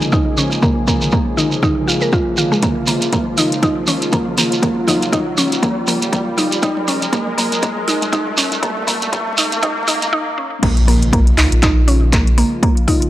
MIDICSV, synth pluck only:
0, 0, Header, 1, 2, 480
1, 0, Start_track
1, 0, Key_signature, -5, "minor"
1, 0, Tempo, 500000
1, 602, Time_signature, 4, 2, 24, 8
1, 12572, End_track
2, 0, Start_track
2, 0, Title_t, "Synth pluck"
2, 0, Program_c, 0, 84
2, 118, Note_on_c, 0, 63, 94
2, 244, Note_off_c, 0, 63, 0
2, 360, Note_on_c, 0, 61, 75
2, 485, Note_off_c, 0, 61, 0
2, 599, Note_on_c, 0, 58, 85
2, 724, Note_off_c, 0, 58, 0
2, 840, Note_on_c, 0, 58, 74
2, 965, Note_off_c, 0, 58, 0
2, 1080, Note_on_c, 0, 58, 82
2, 1205, Note_off_c, 0, 58, 0
2, 1318, Note_on_c, 0, 63, 78
2, 1394, Note_off_c, 0, 63, 0
2, 1562, Note_on_c, 0, 63, 104
2, 1686, Note_off_c, 0, 63, 0
2, 1801, Note_on_c, 0, 65, 73
2, 1925, Note_off_c, 0, 65, 0
2, 1937, Note_on_c, 0, 70, 77
2, 2036, Note_off_c, 0, 70, 0
2, 2042, Note_on_c, 0, 65, 80
2, 2173, Note_off_c, 0, 65, 0
2, 2282, Note_on_c, 0, 65, 73
2, 2357, Note_off_c, 0, 65, 0
2, 2417, Note_on_c, 0, 56, 78
2, 2474, Note_off_c, 0, 56, 0
2, 2521, Note_on_c, 0, 58, 84
2, 2645, Note_off_c, 0, 58, 0
2, 2760, Note_on_c, 0, 58, 76
2, 2885, Note_off_c, 0, 58, 0
2, 3000, Note_on_c, 0, 58, 80
2, 3125, Note_off_c, 0, 58, 0
2, 3241, Note_on_c, 0, 63, 78
2, 3316, Note_off_c, 0, 63, 0
2, 3482, Note_on_c, 0, 63, 103
2, 3606, Note_off_c, 0, 63, 0
2, 3721, Note_on_c, 0, 61, 77
2, 3845, Note_off_c, 0, 61, 0
2, 3964, Note_on_c, 0, 58, 83
2, 4087, Note_off_c, 0, 58, 0
2, 4202, Note_on_c, 0, 58, 73
2, 4326, Note_off_c, 0, 58, 0
2, 4442, Note_on_c, 0, 58, 81
2, 4566, Note_off_c, 0, 58, 0
2, 4681, Note_on_c, 0, 63, 76
2, 4756, Note_off_c, 0, 63, 0
2, 4920, Note_on_c, 0, 63, 99
2, 5045, Note_off_c, 0, 63, 0
2, 5161, Note_on_c, 0, 61, 81
2, 5285, Note_off_c, 0, 61, 0
2, 5402, Note_on_c, 0, 58, 87
2, 5526, Note_off_c, 0, 58, 0
2, 5641, Note_on_c, 0, 58, 75
2, 5765, Note_off_c, 0, 58, 0
2, 5880, Note_on_c, 0, 58, 82
2, 6005, Note_off_c, 0, 58, 0
2, 6120, Note_on_c, 0, 63, 73
2, 6196, Note_off_c, 0, 63, 0
2, 6363, Note_on_c, 0, 63, 101
2, 6486, Note_off_c, 0, 63, 0
2, 6602, Note_on_c, 0, 61, 75
2, 6726, Note_off_c, 0, 61, 0
2, 6842, Note_on_c, 0, 58, 86
2, 6966, Note_off_c, 0, 58, 0
2, 7081, Note_on_c, 0, 58, 78
2, 7205, Note_off_c, 0, 58, 0
2, 7321, Note_on_c, 0, 58, 90
2, 7445, Note_off_c, 0, 58, 0
2, 7563, Note_on_c, 0, 63, 78
2, 7637, Note_off_c, 0, 63, 0
2, 7801, Note_on_c, 0, 63, 104
2, 7925, Note_off_c, 0, 63, 0
2, 8040, Note_on_c, 0, 61, 76
2, 8165, Note_off_c, 0, 61, 0
2, 8281, Note_on_c, 0, 58, 82
2, 8405, Note_off_c, 0, 58, 0
2, 8519, Note_on_c, 0, 58, 77
2, 8644, Note_off_c, 0, 58, 0
2, 8761, Note_on_c, 0, 58, 82
2, 8885, Note_off_c, 0, 58, 0
2, 9004, Note_on_c, 0, 63, 76
2, 9077, Note_off_c, 0, 63, 0
2, 9241, Note_on_c, 0, 63, 111
2, 9365, Note_off_c, 0, 63, 0
2, 9481, Note_on_c, 0, 63, 100
2, 9612, Note_off_c, 0, 63, 0
2, 9722, Note_on_c, 0, 63, 105
2, 9846, Note_off_c, 0, 63, 0
2, 9962, Note_on_c, 0, 61, 77
2, 10086, Note_off_c, 0, 61, 0
2, 10201, Note_on_c, 0, 58, 81
2, 10325, Note_off_c, 0, 58, 0
2, 10442, Note_on_c, 0, 58, 75
2, 10566, Note_off_c, 0, 58, 0
2, 10683, Note_on_c, 0, 58, 85
2, 10806, Note_off_c, 0, 58, 0
2, 10920, Note_on_c, 0, 63, 76
2, 10996, Note_off_c, 0, 63, 0
2, 11160, Note_on_c, 0, 63, 103
2, 11285, Note_off_c, 0, 63, 0
2, 11401, Note_on_c, 0, 61, 78
2, 11525, Note_off_c, 0, 61, 0
2, 11642, Note_on_c, 0, 58, 83
2, 11766, Note_off_c, 0, 58, 0
2, 11882, Note_on_c, 0, 58, 76
2, 12006, Note_off_c, 0, 58, 0
2, 12122, Note_on_c, 0, 58, 84
2, 12246, Note_off_c, 0, 58, 0
2, 12361, Note_on_c, 0, 63, 75
2, 12436, Note_off_c, 0, 63, 0
2, 12572, End_track
0, 0, End_of_file